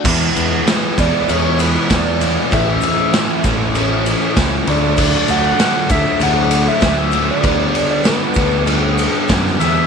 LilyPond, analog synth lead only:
\new Staff \with { instrumentName = "Analog synth lead" } { \time 4/4 \key e \mixolydian \tempo 4 = 97 r4. d''8 cis''8 b'8 d''4 | e''4. r2 d''8~ | d''8 fis''4 e''8 fis''8. e''4 d''16~ | d''8. d''16 b'4 r4. e''8 | }